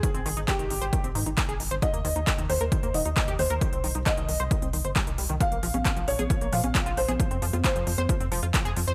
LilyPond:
<<
  \new Staff \with { instrumentName = "Felt piano" } { \time 4/4 \key f \minor \tempo 4 = 134 aes'4 g'4. r4. | ees''4. c''4 ees''4 c''8~ | c''4 ees''4. r4. | f''4. des''4 f''4 c''8~ |
c''4 c''4. r4. | }
  \new Staff \with { instrumentName = "Synth arpeggio sound" } { \clef bass \time 4/4 \key f \minor ees16 c'16 ees16 ees'16 ees16 ees16 ees16 c''16 ees16 c'16 ees16 ees'16 ees16 aes'16 ees16 c''16 | ees16 bes16 ees16 ees'16 ees16 ees16 ees16 bes'16 ees16 bes16 ees16 ees'16 ees16 g'16 ees16 bes'16 | ees16 c'16 ees16 ees'16 ees16 ees16 ees16 c''16 ees16 c'16 ees16 c''16 g16 ees16 g16 ees16 | f16 bes16 f16 des'16 des'16 f16 f16 aes'16 f16 bes16 f16 des'16 f16 f'16 f16 aes'16 |
f16 c'16 f16 f'16 f'16 f16 f16 c''16 f16 c'16 f16 f'16 f16 aes'16 f16 c''16 | }
  \new Staff \with { instrumentName = "Analog synth bass" } { \clef bass \time 4/4 \key f \minor r16 aes,,16 aes,,16 aes,,16 r16 aes,,16 aes,,16 aes,,16 r16 aes,,16 aes,16 aes,,16 r16 aes,,16 aes,,16 aes,,16 | r16 ees,16 ees,16 ees,16 r16 ees,16 ees,16 ees,16 r16 ees,16 ees,,16 ees,16 r16 ees,16 ees,16 ees,16 | r16 c,16 c,16 c,16 r16 c,16 c,16 c,16 r16 c,16 c,16 g,,16 r16 c,16 c,16 c,16 | r16 bes,,16 bes,,16 bes,,16 r16 bes,,16 bes,,16 bes,,16 r16 bes,,16 bes,16 bes,,16 r16 bes,,16 bes,,16 bes,,16 |
r16 f,16 f,16 f,16 r16 f,16 f,16 f,16 r16 f,16 f,,16 f,16 r16 f,16 f,16 f,16 | }
  \new DrumStaff \with { instrumentName = "Drums" } \drummode { \time 4/4 <hh bd>16 hh16 hho16 hh16 <hc hh bd>16 hh16 hho16 hh16 <hh bd>16 hh16 hho16 hh16 <hc hh bd>16 hh16 hho16 hh16 | <hh bd>16 hh16 hho16 hh16 <hc hh bd>16 hh16 hho16 hh16 <hh bd>16 hh16 hho16 hh16 <hc hh bd>16 hh16 hho16 hh16 | <hh bd>16 hh16 hho16 hh16 <hc hh bd>16 hh16 hho16 hh16 <hh bd>16 hh16 hho16 hh16 <hc hh bd>16 hh16 hho16 hh16 | <hh bd>16 hh16 hho16 <cgho hh>16 <hc hh bd>16 hh16 hho16 <cgho hh>16 <hh bd>16 hh16 hho16 <cgho hh>16 <hc hh bd>16 hh16 hho16 <cgho hh>16 |
<hh bd>16 hh16 hho16 <cgho hh>16 <hc hh bd>16 hh16 hho16 <cgho hh>16 <hh bd>16 hh16 hho16 hh16 <hc hh bd>16 hh16 hho16 hh16 | }
>>